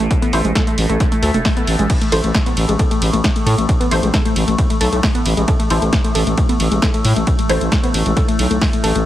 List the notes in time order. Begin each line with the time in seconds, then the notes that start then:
Already playing: A2 A3
0.11 kick, closed hi-hat
0.22 B3, closed hi-hat
0.33 A1 E4 A4 C5, open hi-hat
0.45 A1 G#3, closed hi-hat
0.55 A4, kick, snare, closed hi-hat
0.67 A3, closed hi-hat
0.78 A1, open hi-hat
0.89 A1 A3, closed hi-hat
1.00 kick, snare, closed hi-hat, swell
1.12 A3, closed hi-hat
1.22 D2 A4, open hi-hat
1.34 E1 A3, closed hi-hat
1.45 kick, snare, open hi-hat
1.57 B3, closed hi-hat
1.67 A1, open hi-hat
1.79 A1 G#3, closed hi-hat
1.90 A2 A3, kick, closed hi-hat, crash, ride
2.02 A3, closed hi-hat, ride
2.12 A1 E4 A4 C5, open hi-hat, ride
2.24 A1 A3, closed hi-hat, ride
2.35 kick, snare, closed hi-hat, ride
2.46 B3, closed hi-hat, ride
2.57 A1, open hi-hat, ride
2.68 A1 G#3, closed hi-hat, ride
2.79 A4, kick, closed hi-hat, ride
2.91 A3, closed hi-hat, ride
3.02 A1, open hi-hat, ride
3.13 A1 A3, closed hi-hat, ride
3.24 kick, snare, closed hi-hat, ride
3.36 A3, closed hi-hat, ride
3.46 A2 A4, open hi-hat, ride
3.58 A1 A3, closed hi-hat, ride
3.69 kick, closed hi-hat, ride
3.80 B3, closed hi-hat, ride
3.91 A1 E4 A4 C5, open hi-hat, ride
4.03 A1 G#3, closed hi-hat, ride
4.14 A4, kick, snare, closed hi-hat, ride
4.25 A3, closed hi-hat, ride
4.36 A1, open hi-hat, ride
4.48 A1 A3, closed hi-hat, ride
4.58 kick, closed hi-hat, ride
4.70 A3, closed hi-hat, ride
4.81 B1 A4, open hi-hat, ride
4.92 B1 A3, closed hi-hat, ride
5.03 kick, snare, open hi-hat, ride
5.15 B3, closed hi-hat, ride
5.26 A1, open hi-hat, ride
5.37 A1 G#3, closed hi-hat, ride
5.48 A4, kick, closed hi-hat, ride
5.59 A3, closed hi-hat, ride
5.70 A1 E4 A4 C5, open hi-hat, ride
5.82 A1 A3, closed hi-hat, ride
5.93 kick, snare, closed hi-hat, ride
6.04 A3, closed hi-hat, ride
6.15 A1 A4, open hi-hat, ride
6.27 A1 A3, closed hi-hat, ride
6.38 kick, closed hi-hat, ride
6.49 B3, closed hi-hat, ride
6.60 A1, open hi-hat, ride
6.72 A1 G#3, closed hi-hat, ride
6.82 A4, kick, snare, closed hi-hat, ride
6.94 A3, closed hi-hat, ride
7.05 A2, open hi-hat, ride
7.16 A1 A3, closed hi-hat, ride
7.27 kick, closed hi-hat, ride
7.39 A3, closed hi-hat, ride
7.49 A1 E4 A4 C5, open hi-hat, ride
7.61 A1 A3, closed hi-hat, ride
7.72 kick, snare, closed hi-hat, ride
7.83 B3, closed hi-hat, ride
7.94 A1, open hi-hat, ride
8.06 A1 G#3, closed hi-hat, ride
8.16 A4, kick, snare, closed hi-hat, ride
8.28 A3, closed hi-hat, ride
8.39 B1, open hi-hat, ride
8.51 B1 A3, closed hi-hat, ride
8.61 kick, snare, open hi-hat, ride
8.73 A3, closed hi-hat, ride
8.84 A1 A4, open hi-hat, ride
8.95 A1 A3, closed hi-hat, ride